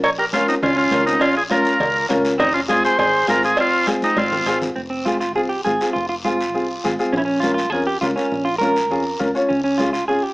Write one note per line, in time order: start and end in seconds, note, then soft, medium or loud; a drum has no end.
0.04 0.51 A#1 loud
0.04 0.09 A#4 medium
0.04 0.10 C#5 loud
0.04 cowbell loud
0.04 high conga soft
0.04 long guiro medium
0.18 0.23 G4 medium
0.18 0.26 A#4 medium
0.33 0.46 C#4 medium
0.33 0.54 C#4 medium
0.33 0.47 F4 medium
0.33 0.54 F4 medium
0.33 0.54 A#4 medium
0.33 cowbell medium
0.33 high conga medium
0.33 short guiro medium
0.48 0.53 C4 medium
0.48 0.55 D#4 medium
0.48 short guiro medium
0.62 0.86 C#2 medium
0.62 0.75 C#4 medium
0.62 0.76 F4 medium
0.62 cowbell medium
0.62 high conga soft
0.62 low conga medium
0.62 long guiro medium
0.76 1.04 C#4 medium
0.76 1.05 F4 medium
0.91 1.21 C#2 medium
0.91 1.13 C#4 medium
0.91 1.13 F4 medium
0.91 1.13 A#4 medium
0.91 cowbell medium
0.91 high conga medium
0.91 low conga medium
0.91 short guiro medium
1.06 1.19 C4 medium
1.06 1.22 D#4 medium
1.06 short guiro medium
1.20 1.68 A#1 loud
1.20 1.34 C#4 medium
1.20 1.35 F4 medium
1.20 cowbell loud
1.20 high conga soft
1.20 long guiro medium
1.35 1.40 F4 medium
1.35 1.44 G#4 medium
1.50 1.71 C#4 medium
1.50 2.05 F4 medium
1.50 1.72 F4 medium
1.50 1.72 A#4 medium
1.50 2.06 A#4 medium
1.50 cowbell medium
1.50 high conga medium
1.50 short guiro medium
1.65 short guiro medium
1.80 2.04 C#2 medium
1.80 cowbell medium
1.80 high conga soft
1.80 low conga medium
1.80 long guiro medium
2.09 2.40 C#2 medium
2.09 2.30 C#4 medium
2.09 2.30 F4 medium
2.09 2.31 A#4 loud
2.09 cowbell medium
2.09 high conga medium
2.09 low conga medium
2.09 short guiro medium
2.25 short guiro medium
2.38 2.86 F1 loud
2.38 2.53 C4 medium
2.38 2.53 D#4 loud
2.38 cowbell loud
2.38 high conga soft
2.38 low conga medium
2.38 long guiro medium
2.54 2.60 C#4 medium
2.54 2.61 F4 medium
2.68 2.89 C4 medium
2.68 2.89 F4 medium
2.68 2.84 F4 medium
2.68 2.89 G#4 medium
2.68 2.83 G#4 loud
2.68 cowbell medium
2.68 high conga medium
2.68 short guiro medium
2.85 2.98 G#4 medium
2.85 2.98 C5 loud
2.85 short guiro medium
2.99 3.22 G#1 loud
2.99 3.27 G#4 medium
2.99 3.27 C5 loud
2.99 cowbell medium
2.99 high conga soft
2.99 low conga medium
2.99 long guiro medium
3.27 3.57 G#1 medium
3.27 3.48 C4 medium
3.27 3.49 F4 medium
3.27 3.43 F4 medium
3.27 3.49 G#4 medium
3.27 3.43 A#4 medium
3.27 cowbell medium
3.27 high conga medium
3.27 short guiro medium
3.43 3.58 F4 medium
3.43 3.58 G#4 medium
3.43 short guiro medium
3.57 4.05 F1 loud
3.57 3.86 C4 medium
3.57 3.87 F4 loud
3.57 cowbell loud
3.57 high conga soft
3.57 long guiro medium
3.87 4.08 C4 medium
3.87 4.08 F4 medium
3.87 4.08 G#4 medium
3.87 cowbell medium
3.87 high conga medium
3.87 short guiro medium
4.02 4.17 C4 medium
4.02 4.18 D#4 medium
4.02 high conga medium
4.02 short guiro medium
4.16 4.40 G#1 medium
4.16 4.59 C4 medium
4.16 4.59 F4 medium
4.16 cowbell medium
4.16 high conga medium
4.16 long guiro medium
4.32 low conga medium
4.46 4.70 G#1 medium
4.46 4.68 C4 medium
4.46 4.68 F4 medium
4.46 4.68 G#4 medium
4.46 cowbell medium
4.46 short guiro medium
4.62 low conga medium
4.62 short guiro medium
4.76 5.36 F1 medium
4.76 4.81 C4 medium
4.76 high conga soft
4.76 long guiro medium
4.90 5.06 C4 medium
5.05 5.16 C4 medium
5.05 5.19 F4 medium
5.05 5.16 F4 medium
5.05 5.17 G#4 medium
5.05 high conga medium
5.05 short guiro medium
5.20 5.35 F4 medium
5.20 short guiro medium
5.35 5.59 C2 medium
5.35 5.46 C4 medium
5.35 5.46 F4 medium
5.35 5.41 G#4 medium
5.35 5.46 G#4 medium
5.35 high conga soft
5.35 long guiro medium
5.49 5.63 G4 medium
5.64 5.77 G#1 medium
5.64 5.70 C4 medium
5.64 5.71 F4 medium
5.64 5.92 G#4 medium
5.64 5.71 G#4 medium
5.64 high conga medium
5.64 short guiro medium
5.81 5.96 C4 medium
5.81 5.96 F4 medium
5.81 5.97 G#4 medium
5.81 short guiro medium
5.93 6.55 F1 medium
5.93 6.08 F4 medium
5.93 high conga soft
5.93 long guiro medium
6.09 6.14 F4 medium
6.25 6.35 C4 medium
6.25 6.95 F4 medium
6.25 6.35 F4 medium
6.25 6.35 G#4 medium
6.25 high conga medium
6.25 short guiro medium
6.41 short guiro medium
6.54 6.78 C2 loud
6.54 6.64 C4 medium
6.54 6.65 F4 medium
6.54 6.65 G#4 medium
6.54 high conga soft
6.54 long guiro medium
6.84 6.96 G#1 medium
6.84 6.89 C4 medium
6.84 6.89 F4 medium
6.84 6.89 G#4 medium
6.84 high conga medium
6.84 short guiro medium
6.99 7.13 C4 medium
6.99 7.14 F4 medium
6.99 7.14 G#4 medium
6.99 short guiro medium
7.13 7.72 A#1 medium
7.13 7.16 C#4 medium
7.13 long guiro medium
7.17 7.24 C#4 medium
7.17 7.21 E4 medium
7.25 7.40 C#4 medium
7.40 7.53 C#4 medium
7.40 7.53 F4 medium
7.40 7.54 A#4 medium
7.40 high conga medium
7.40 short guiro medium
7.54 7.70 F4 medium
7.54 short guiro medium
7.70 7.96 F2 loud
7.70 7.83 C#4 medium
7.70 7.83 F4 medium
7.70 7.86 G#4 medium
7.70 7.83 A#4 medium
7.70 high conga soft
7.70 long guiro medium
7.87 8.01 G4 medium
8.01 8.14 C#2 medium
8.01 8.08 C#4 medium
8.01 8.06 F4 medium
8.01 8.08 F4 medium
8.01 8.08 A#4 medium
8.01 high conga medium
8.01 short guiro medium
8.16 8.32 C#4 medium
8.16 8.47 C#4 medium
8.16 8.32 F4 medium
8.16 8.32 A#4 medium
8.16 short guiro medium
8.32 8.91 A#1 medium
8.32 high conga soft
8.32 long guiro medium
8.45 8.58 F4 medium
8.58 8.72 C#4 medium
8.58 8.72 F4 medium
8.58 9.30 A#4 medium
8.58 high conga medium
8.58 short guiro medium
8.62 8.72 A#4 medium
8.76 short guiro medium
8.91 9.15 F2 loud
8.91 9.01 C#4 medium
8.91 9.01 F4 medium
8.91 9.01 G#4 medium
8.91 high conga soft
8.91 long guiro medium
9.19 9.32 C#2 medium
9.19 9.25 C#4 medium
9.19 9.25 F4 medium
9.19 9.25 A#4 medium
9.19 high conga medium
9.19 short guiro medium
9.35 9.50 C#4 medium
9.35 9.50 F4 medium
9.35 9.50 C#5 medium
9.35 short guiro medium
9.49 10.09 C#2 medium
9.49 9.63 C#4 medium
9.49 high conga soft
9.49 long guiro medium
9.64 9.80 C#4 medium
9.78 9.90 C#4 medium
9.78 9.92 F4 medium
9.78 9.90 F4 medium
9.78 9.90 G#4 medium
9.78 high conga medium
9.78 short guiro medium
9.93 10.08 F4 medium
9.93 short guiro medium
10.08 10.33 G#1 medium
10.08 10.19 C#4 medium
10.08 10.20 F4 medium
10.08 10.23 G#4 medium
10.08 10.20 G#4 medium
10.08 high conga soft
10.08 long guiro medium
10.23 10.34 G4 medium